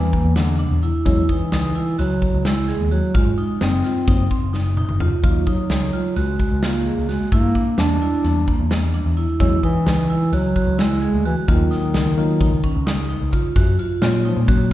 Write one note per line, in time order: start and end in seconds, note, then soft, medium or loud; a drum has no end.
0.00 0.33 E3 medium
0.13 0.32 A#3 medium
0.13 kick medium
0.13 closed hi-hat medium
0.25 0.64 E2 medium
0.36 0.85 D3 medium
0.36 0.55 D4 medium
0.36 snare medium
0.36 closed hi-hat medium
0.59 0.79 D4 medium
0.59 closed hi-hat medium
0.71 0.91 E2 medium
0.83 1.02 E4 medium
0.83 closed hi-hat medium
1.05 1.26 E2 medium
1.05 1.22 F#3 medium
1.05 1.22 G#3 medium
1.05 1.22 C#4 medium
1.05 1.25 E4 medium
1.05 kick medium
1.05 closed hi-hat medium
1.29 1.95 E3 medium
1.29 1.48 D#4 medium
1.29 kick medium
1.29 closed hi-hat medium
1.52 1.72 C#2 medium
1.52 1.72 D#4 medium
1.52 snare medium
1.52 closed hi-hat medium
1.75 1.95 E4 medium
1.75 closed hi-hat soft
1.98 2.19 C#2 medium
1.98 2.47 F#3 medium
1.98 2.18 F#4 medium
1.98 closed hi-hat medium
2.22 2.41 F#4 medium
2.22 kick medium
2.22 closed hi-hat medium
2.34 2.73 C#2 medium
2.45 2.91 G#3 medium
2.45 2.64 E4 medium
2.45 snare medium
2.45 closed hi-hat medium
2.68 2.87 G#4 medium
2.68 snare soft
2.68 closed hi-hat medium
2.80 3.00 D#2 medium
2.92 3.16 F#3 medium
2.92 3.11 F#4 medium
2.92 closed hi-hat soft
3.15 3.34 G#1 medium
3.15 3.61 G#3 medium
3.15 3.34 F4 medium
3.15 kick loud
3.15 closed hi-hat medium
3.38 3.57 D#4 medium
3.38 closed hi-hat medium
3.61 3.81 F#1 medium
3.61 3.77 F#3 medium
3.61 3.77 A#3 medium
3.61 3.77 C4 medium
3.61 4.50 C4 medium
3.61 3.80 D#4 medium
3.61 snare loud
3.61 closed hi-hat medium
3.84 4.03 F4 medium
3.84 snare soft
3.84 closed hi-hat soft
4.07 4.27 F#1 medium
4.07 4.24 F#3 medium
4.07 4.24 A#3 medium
4.07 4.24 C4 medium
4.07 4.27 D#4 medium
4.07 kick medium
4.07 closed hi-hat medium
4.31 4.50 C4 medium
4.31 kick medium
4.31 closed hi-hat medium
4.43 4.82 F#1 medium
4.53 4.73 D#4 medium
4.53 snare medium
4.77 4.96 D#4 medium
4.77 high tom medium
4.89 5.09 F#1 medium
4.89 mid tom medium
5.00 5.20 F4 medium
5.00 mid tom medium
5.23 5.43 D#2 medium
5.23 5.56 F#3 medium
5.23 5.56 D#4 medium
5.23 5.56 F4 medium
5.23 5.43 F4 medium
5.23 kick loud
5.23 closed hi-hat medium
5.47 6.18 F#3 medium
5.47 5.66 D#4 medium
5.47 kick medium
5.47 closed hi-hat medium
5.70 5.90 C#2 medium
5.70 5.89 D#4 medium
5.70 snare medium
5.70 closed hi-hat medium
5.93 6.12 F4 medium
5.93 closed hi-hat medium
6.16 6.36 C#2 medium
6.16 6.65 G#3 medium
6.16 6.35 F#4 medium
6.16 closed hi-hat medium
6.40 6.59 F#4 medium
6.40 kick medium
6.40 closed hi-hat medium
6.51 6.90 C#2 medium
6.63 7.09 A#3 medium
6.63 6.82 F4 medium
6.63 snare medium
6.63 closed hi-hat medium
6.86 7.05 G#4 medium
6.86 closed hi-hat soft
6.97 7.17 C#2 medium
7.09 7.31 G#3 medium
7.09 7.28 F#4 medium
7.09 snare soft
7.09 closed hi-hat medium
7.32 7.52 G2 medium
7.32 7.80 A#3 loud
7.32 7.51 E4 medium
7.32 kick loud
7.32 closed hi-hat medium
7.55 7.74 D4 medium
7.55 kick medium
7.55 closed hi-hat soft
7.78 7.98 E2 medium
7.78 7.94 G3 medium
7.78 7.94 A#3 medium
7.78 7.94 D4 medium
7.78 7.98 D4 medium
7.78 8.71 D4 medium
7.78 snare loud
7.78 closed hi-hat medium
8.02 8.21 E4 medium
8.02 closed hi-hat soft
8.24 8.44 E2 medium
8.24 8.41 G3 medium
8.24 8.41 A#3 soft
8.24 8.41 D4 medium
8.24 8.44 D4 medium
8.24 snare soft
8.24 closed hi-hat medium
8.47 8.67 A#3 medium
8.47 kick medium
8.47 closed hi-hat medium
8.59 8.98 E2 medium
8.71 8.90 D4 medium
8.71 snare loud
8.71 closed hi-hat medium
8.94 9.13 D4 medium
8.94 closed hi-hat medium
9.06 9.25 E2 medium
9.17 9.36 E4 medium
9.17 closed hi-hat medium
9.40 9.60 E2 medium
9.40 9.56 F#3 medium
9.40 9.56 G#3 medium
9.40 9.56 C#4 medium
9.40 9.59 E4 medium
9.40 kick medium
9.40 closed hi-hat medium
9.63 10.35 E3 medium
9.63 9.82 D#4 medium
9.63 kick medium
9.63 closed hi-hat medium
9.86 10.06 C#2 medium
9.86 10.05 D#4 medium
9.86 snare medium
9.86 closed hi-hat medium
10.10 10.29 E4 medium
10.10 closed hi-hat medium
10.32 10.52 C#2 medium
10.32 10.79 F#3 medium
10.32 10.52 F#4 medium
10.32 closed hi-hat medium
10.56 10.75 F#4 medium
10.56 kick medium
10.56 closed hi-hat medium
10.67 11.06 C#2 medium
10.78 11.22 G#3 loud
10.78 10.98 E4 medium
10.78 snare loud
10.78 closed hi-hat medium
11.02 11.21 G#4 medium
11.02 closed hi-hat medium
11.14 11.33 D2 medium
11.25 11.36 E3 medium
11.25 11.44 F#4 medium
11.25 closed hi-hat medium
11.48 11.68 D#2 medium
11.48 13.06 D#3 medium
11.48 12.13 F#3 medium
11.48 12.13 A#3 medium
11.48 12.13 D#4 medium
11.48 11.67 F4 medium
11.48 kick loud
11.48 closed hi-hat medium
11.71 11.90 D#4 medium
11.71 snare soft
11.71 closed hi-hat medium
11.94 12.14 C#2 medium
11.94 12.13 D#4 medium
11.94 snare loud
11.94 closed hi-hat medium
12.17 12.50 F#3 medium
12.17 12.50 A#3 medium
12.17 12.50 D#4 medium
12.17 12.37 F4 medium
12.17 closed hi-hat soft
12.40 12.60 C#2 medium
12.40 12.59 D#4 medium
12.40 kick medium
12.40 closed hi-hat medium
12.63 12.83 C#4 medium
12.63 kick medium
12.63 closed hi-hat medium
12.75 13.14 C#2 medium
12.87 13.06 D#4 medium
12.87 snare loud
12.87 closed hi-hat medium
13.09 13.28 D#4 medium
13.09 closed hi-hat medium
13.21 13.41 C#2 medium
13.32 13.52 F4 medium
13.32 kick medium
13.32 closed hi-hat medium
13.56 13.75 F#2 medium
13.56 13.75 F#4 medium
13.56 kick loud
13.56 closed hi-hat medium
13.79 13.98 F4 medium
13.79 closed hi-hat medium
14.02 14.31 A#2 medium
14.02 14.34 F#3 medium
14.02 14.34 A#3 medium
14.02 14.34 C#4 medium
14.02 14.21 F4 medium
14.02 snare loud
14.02 closed hi-hat medium
14.25 14.43 F3 medium
14.25 14.44 D#4 medium
14.25 closed hi-hat medium
14.36 14.73 A#2 medium
14.42 14.50 G#3 medium
14.48 14.73 F#3 medium
14.48 14.73 A#3 soft
14.48 14.73 C#4 medium
14.48 14.67 F#4 medium
14.48 kick medium
14.48 closed hi-hat medium